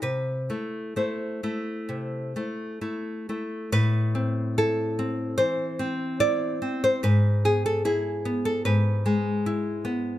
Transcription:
\new Staff \with { instrumentName = "Nylon-string guitar" } { \time 4/4 \key a \minor \tempo 4 = 73 << { b'4 c''2~ c''8 r8 | b'4 a'4 c''4 d''8. c''16 | b'8 gis'16 a'16 gis'8. a'16 b'4. r8 | } \\ { c8 <a e'>8 <a e'>8 <a e'>8 c8 <a e'>8 <a e'>8 <a e'>8 | a,8 c'8 e'8 c'8 e8 c'8 e'8 c'8 | gis,8 b8 e'8 b8 gis,8 gis8 e'8 b8 | } >> }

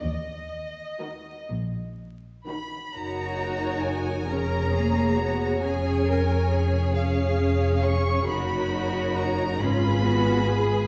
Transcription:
<<
  \new Staff \with { instrumentName = "Violin section" } { \time 6/8 \key ees \minor \tempo 4. = 45 ees''4. r4 ces'''8 | \key fis \major ais''4 gis''8 ais''4. | gis''4. eis''4 cis'''8 | b''4 ais''8 b''4. | }
  \new Staff \with { instrumentName = "Violin section" } { \time 6/8 \key ees \minor r4 <ges' bes'>8 r4 <ges' bes'>8 | \key fis \major <ais' cis''>4. cis''4.~ | cis''2. | <ais' cis''>4. <gis' b'>4. | }
  \new Staff \with { instrumentName = "Cello section" } { \time 6/8 \key ees \minor ees,4. bes,4. | \key fis \major fis'4. ais'8 gis'8 fis'8 | gis'8 ais'8 gis'2 | fis'4. eis'8 fis'8 gis'8 | }
  \new Staff \with { instrumentName = "Viola section" } { \time 6/8 \key ees \minor << { r4 ees'8 r4 ees'8 | \key fis \major fis'4. gis'4. | gis'8 ais'8 gis'8 gis'4. | fis'4. eis'4. | } \\ { r4 ees8 r4 ees8 | dis'4. cis'8 ais8 b8 | cis'4. cis'4. | dis'4. cis'8 b8 gis8 | } >> }
  \new Staff \with { instrumentName = "Double bass section" } { \clef bass \time 6/8 \key ees \minor ees,4. bes,,4. | \key fis \major fis,,4. eis,,4. | eis,,2. | fis,,4. gis,,4. | }
>>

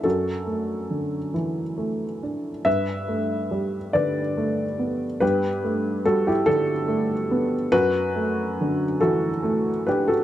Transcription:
<<
  \new Staff \with { instrumentName = "Upright piano" } { \time 6/8 \key g \major \tempo 4. = 47 <fis' a'>4. r4. | <b' e''>4. <b' d''>4. | <g' b'>4 <fis' a'>16 <e' g'>16 <d' a'>4. | <fis' b'>4. <fis' a'>4 <g' b'>16 <fis' a'>16 | }
  \new Staff \with { instrumentName = "Upright piano" } { \time 6/8 \key g \major <fis, d'>8 a8 d8 e8 a8 d'8 | g,8 a8 g8 d8 a8 b8 | g,8 a8 g8 d8 a8 b8 | fis,8 a8 d8 e8 a8 d'8 | }
>>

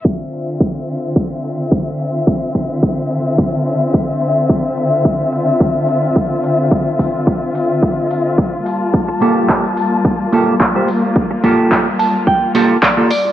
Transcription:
<<
  \new Staff \with { instrumentName = "Clean electric guitar" } { \time 4/4 \key d \minor \tempo 4 = 108 << { r1 | r1 | r1 | r1 |
r1 | r4. a''8 g''8 a''8 d''8 d''8 | } \\ { r1 | r1 | r1 | r1 |
r8 <bes f' g' a'>8. r4 r16 <bes f' g' a'>8 r16 <bes f' g' c''>16 r8 | r8 <bes f' g' a'>8. r4 r16 <bes f' g' a'>8 r16 <bes f' g' a'>16 r8 | } >> }
  \new Staff \with { instrumentName = "String section" } { \time 4/4 \key d \minor << { <c' e''>1~ | <c' e''>1~ | <c' e''>1~ | <c' e''>2.~ <c' e''>8 a''8~ |
a''2.~ a''8 r8 | r1 | } \\ { <d f'>1~ | <d f'>1~ | <d f'>1~ | <d f'>2.~ <d f'>8 <g bes>8~ |
<g bes>1~ | <g bes>1 | } >> }
  \new DrumStaff \with { instrumentName = "Drums" } \drummode { \time 4/4 bd8 hho8 bd8 hho8 bd8 hho8 bd8 hho8 | bd8 <hho bd>8 bd8 hho8 bd8 hho8 bd8 hho8 | bd8 hho8 bd8 hho8 bd8 hho8 bd8 hho8 | bd8 <hho bd>8 bd8 hho8 bd8 hho8 bd8 hho8 |
bd8 hho8 <hc bd>8 hho8 bd8 hho8 <hc bd>8 hho8 | bd8 <hho bd>8 <hc bd>8 hho8 bd8 hho8 <hc bd>8 hho8 | }
>>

